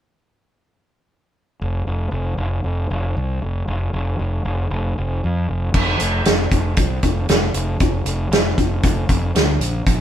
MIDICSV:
0, 0, Header, 1, 3, 480
1, 0, Start_track
1, 0, Tempo, 516351
1, 1499, Time_signature, 4, 2, 24, 8
1, 9303, End_track
2, 0, Start_track
2, 0, Title_t, "Fingered electric bass"
2, 0, Program_c, 0, 33
2, 1501, Note_on_c, 0, 29, 81
2, 1712, Note_off_c, 0, 29, 0
2, 1736, Note_on_c, 0, 29, 68
2, 1950, Note_off_c, 0, 29, 0
2, 1963, Note_on_c, 0, 29, 75
2, 2183, Note_off_c, 0, 29, 0
2, 2208, Note_on_c, 0, 29, 72
2, 2426, Note_off_c, 0, 29, 0
2, 2452, Note_on_c, 0, 29, 68
2, 2668, Note_off_c, 0, 29, 0
2, 2699, Note_on_c, 0, 29, 77
2, 2912, Note_off_c, 0, 29, 0
2, 2944, Note_on_c, 0, 36, 86
2, 3155, Note_off_c, 0, 36, 0
2, 3180, Note_on_c, 0, 29, 68
2, 3393, Note_off_c, 0, 29, 0
2, 3416, Note_on_c, 0, 29, 81
2, 3631, Note_off_c, 0, 29, 0
2, 3654, Note_on_c, 0, 29, 72
2, 3870, Note_off_c, 0, 29, 0
2, 3897, Note_on_c, 0, 29, 77
2, 4111, Note_off_c, 0, 29, 0
2, 4135, Note_on_c, 0, 29, 75
2, 4350, Note_off_c, 0, 29, 0
2, 4374, Note_on_c, 0, 29, 81
2, 4589, Note_off_c, 0, 29, 0
2, 4626, Note_on_c, 0, 29, 70
2, 4836, Note_off_c, 0, 29, 0
2, 4870, Note_on_c, 0, 41, 85
2, 5078, Note_off_c, 0, 41, 0
2, 5101, Note_on_c, 0, 29, 62
2, 5312, Note_off_c, 0, 29, 0
2, 5335, Note_on_c, 0, 29, 82
2, 5536, Note_off_c, 0, 29, 0
2, 5585, Note_on_c, 0, 29, 75
2, 5781, Note_off_c, 0, 29, 0
2, 5820, Note_on_c, 0, 29, 81
2, 6018, Note_off_c, 0, 29, 0
2, 6054, Note_on_c, 0, 29, 77
2, 6254, Note_off_c, 0, 29, 0
2, 6291, Note_on_c, 0, 36, 75
2, 6493, Note_off_c, 0, 36, 0
2, 6537, Note_on_c, 0, 29, 77
2, 6736, Note_off_c, 0, 29, 0
2, 6778, Note_on_c, 0, 29, 88
2, 6976, Note_off_c, 0, 29, 0
2, 7007, Note_on_c, 0, 29, 75
2, 7210, Note_off_c, 0, 29, 0
2, 7256, Note_on_c, 0, 29, 85
2, 7455, Note_off_c, 0, 29, 0
2, 7484, Note_on_c, 0, 29, 72
2, 7688, Note_off_c, 0, 29, 0
2, 7724, Note_on_c, 0, 29, 82
2, 7927, Note_off_c, 0, 29, 0
2, 7978, Note_on_c, 0, 29, 75
2, 8175, Note_off_c, 0, 29, 0
2, 8213, Note_on_c, 0, 29, 83
2, 8413, Note_off_c, 0, 29, 0
2, 8451, Note_on_c, 0, 29, 82
2, 8651, Note_off_c, 0, 29, 0
2, 8694, Note_on_c, 0, 38, 79
2, 8893, Note_off_c, 0, 38, 0
2, 8919, Note_on_c, 0, 34, 75
2, 9124, Note_off_c, 0, 34, 0
2, 9172, Note_on_c, 0, 34, 94
2, 9303, Note_off_c, 0, 34, 0
2, 9303, End_track
3, 0, Start_track
3, 0, Title_t, "Drums"
3, 5336, Note_on_c, 9, 49, 73
3, 5337, Note_on_c, 9, 36, 95
3, 5429, Note_off_c, 9, 49, 0
3, 5430, Note_off_c, 9, 36, 0
3, 5575, Note_on_c, 9, 42, 63
3, 5668, Note_off_c, 9, 42, 0
3, 5814, Note_on_c, 9, 42, 78
3, 5822, Note_on_c, 9, 38, 102
3, 5907, Note_off_c, 9, 42, 0
3, 5915, Note_off_c, 9, 38, 0
3, 6055, Note_on_c, 9, 42, 55
3, 6057, Note_on_c, 9, 36, 74
3, 6148, Note_off_c, 9, 42, 0
3, 6150, Note_off_c, 9, 36, 0
3, 6290, Note_on_c, 9, 42, 85
3, 6296, Note_on_c, 9, 36, 109
3, 6383, Note_off_c, 9, 42, 0
3, 6389, Note_off_c, 9, 36, 0
3, 6533, Note_on_c, 9, 42, 63
3, 6536, Note_on_c, 9, 36, 76
3, 6626, Note_off_c, 9, 42, 0
3, 6629, Note_off_c, 9, 36, 0
3, 6774, Note_on_c, 9, 42, 76
3, 6782, Note_on_c, 9, 38, 101
3, 6867, Note_off_c, 9, 42, 0
3, 6875, Note_off_c, 9, 38, 0
3, 7011, Note_on_c, 9, 42, 57
3, 7104, Note_off_c, 9, 42, 0
3, 7252, Note_on_c, 9, 42, 74
3, 7256, Note_on_c, 9, 36, 97
3, 7345, Note_off_c, 9, 42, 0
3, 7349, Note_off_c, 9, 36, 0
3, 7491, Note_on_c, 9, 42, 58
3, 7584, Note_off_c, 9, 42, 0
3, 7739, Note_on_c, 9, 42, 74
3, 7747, Note_on_c, 9, 38, 109
3, 7832, Note_off_c, 9, 42, 0
3, 7840, Note_off_c, 9, 38, 0
3, 7976, Note_on_c, 9, 36, 75
3, 7977, Note_on_c, 9, 42, 49
3, 8068, Note_off_c, 9, 36, 0
3, 8070, Note_off_c, 9, 42, 0
3, 8211, Note_on_c, 9, 42, 76
3, 8214, Note_on_c, 9, 36, 102
3, 8304, Note_off_c, 9, 42, 0
3, 8307, Note_off_c, 9, 36, 0
3, 8450, Note_on_c, 9, 42, 59
3, 8452, Note_on_c, 9, 36, 81
3, 8543, Note_off_c, 9, 42, 0
3, 8545, Note_off_c, 9, 36, 0
3, 8697, Note_on_c, 9, 42, 75
3, 8705, Note_on_c, 9, 38, 99
3, 8790, Note_off_c, 9, 42, 0
3, 8798, Note_off_c, 9, 38, 0
3, 8934, Note_on_c, 9, 42, 58
3, 9027, Note_off_c, 9, 42, 0
3, 9171, Note_on_c, 9, 36, 88
3, 9172, Note_on_c, 9, 42, 73
3, 9264, Note_off_c, 9, 36, 0
3, 9265, Note_off_c, 9, 42, 0
3, 9303, End_track
0, 0, End_of_file